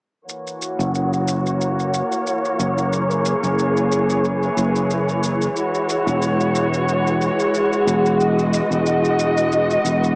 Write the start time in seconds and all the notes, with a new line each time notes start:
0.28 E3 A#3 F#4 C#5, shaker
0.47 shaker
0.62 shaker
0.79 F#1, shaker
0.95 shaker
1.13 shaker
1.28 shaker
1.46 shaker
1.61 shaker
1.79 shaker
1.94 shaker
2.12 shaker
2.27 shaker
2.45 shaker
2.59 F#1, shaker
2.78 shaker
2.91 G#4, shaker
3.11 shaker
3.26 shaker
3.43 F#1, shaker
3.59 shaker
3.77 shaker
3.92 shaker
4.10 shaker
4.25 shaker
4.43 shaker
4.57 F#1, shaker
4.76 shaker
4.91 shaker
5.09 shaker
5.24 shaker
5.42 shaker
5.56 G#3 F#4 C#5, shaker
5.75 shaker
5.90 shaker
6.07 E1, shaker
6.22 shaker
6.41 shaker
6.55 shaker
6.74 shaker
6.89 shaker
7.07 shaker
7.21 shaker
7.40 shaker
7.54 shaker
7.73 shaker
7.87 E1, shaker
8.06 shaker
8.19 D#5, shaker
8.39 shaker
8.54 shaker
8.71 E1, shaker
8.86 shaker
9.05 shaker
9.19 shaker
9.37 shaker
9.52 shaker
9.70 shaker
9.84 E1, shaker
10.04 shaker